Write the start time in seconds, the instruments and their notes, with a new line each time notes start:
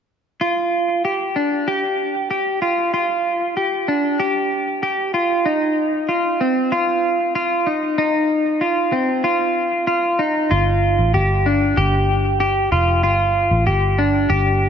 0.41 clean electric guitar F4
1.05 clean electric guitar G4
1.36 clean electric guitar D4
1.68 clean electric guitar G4
2.31 clean electric guitar G4
2.62 clean electric guitar F4
2.94 clean electric guitar F4
3.57 clean electric guitar G4
3.88 clean electric guitar D4
4.20 clean electric guitar G4
4.83 clean electric guitar G4
5.14 clean electric guitar F4
5.46 clean electric guitar D#4
6.09 clean electric guitar F4
6.41 clean electric guitar C4
6.72 clean electric guitar F4
7.35 clean electric guitar F4
7.67 clean electric guitar D#4
7.98 clean electric guitar D#4
8.61 clean electric guitar F4
8.92 clean electric guitar C4
9.24 clean electric guitar F4
9.87 clean electric guitar F4
10.19 clean electric guitar D#4
10.51 fingered electric bass G1, clean electric guitar F4
10.99 fingered electric bass A1
11.14 fingered electric bass G1, clean electric guitar G4
11.46 clean electric guitar D4
11.77 fingered electric bass G1, clean electric guitar G4
12.40 clean electric guitar G4
12.72 fingered electric bass F1, clean electric guitar F4
13.03 fingered electric bass G1, clean electric guitar F4
13.51 fingered electric bass A1
13.67 fingered electric bass G1, clean electric guitar G4
13.98 clean electric guitar D4
14.30 fingered electric bass G1, clean electric guitar G4